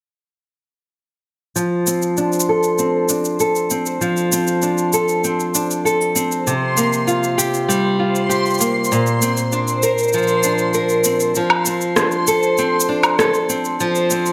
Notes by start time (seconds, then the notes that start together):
1.56 F3 C5 C6, shaker
1.87 C4, shaker
2.02 shaker
2.17 D4, shaker
2.32 shaker
2.40 shaker
2.49 A4
2.63 shaker
2.78 C4, shaker
3.09 D4, shaker
3.25 shaker
3.40 A4, shaker
3.55 shaker
3.70 C4, shaker
3.86 shaker
4.01 F3, shaker
4.17 shaker
4.32 C4, shaker
4.47 shaker
4.62 D4, shaker
4.78 shaker
4.93 A4, shaker
5.08 shaker
5.24 C4, shaker
5.40 shaker
5.55 D4, shaker
5.71 shaker
5.85 A4, shaker
6.01 shaker
6.16 C4, shaker
6.32 shaker
6.47 C3, shaker
6.77 A#3, shaker
6.93 shaker
7.07 F4, shaker
7.24 shaker
7.38 G4, shaker
7.54 shaker
7.68 G3, shaker
7.99 F4
8.15 shaker
8.29 G4, shaker
8.46 shaker
8.50 shaker
8.54 shaker
8.58 A#3, shaker
8.61 shaker
8.84 shaker
8.92 A#2, shaker
9.07 shaker
9.22 C4, shaker
9.37 shaker
9.52 D4, shaker
9.68 shaker
9.83 A#4, shaker
9.98 shaker
10.08 shaker
10.13 F3, shaker
10.23 shaker
10.28 shaker
10.43 D4, shaker
10.58 shaker
10.74 A#4, shaker
10.89 shaker
11.04 C4, shaker
11.20 shaker
11.35 F3, shaker
11.50 low woodblock
11.66 C4, shaker
11.81 shaker
11.96 D4, cross-stick, shaker
12.11 shaker
12.27 A4, shaker
12.43 shaker
12.58 C4, shaker
12.80 shaker
12.89 D4
13.03 low woodblock, shaker
13.19 A4, cross-stick, shaker
13.34 shaker
13.49 C4, shaker
13.65 shaker
13.80 F3, shaker
13.95 shaker
14.10 C4, shaker
14.26 shaker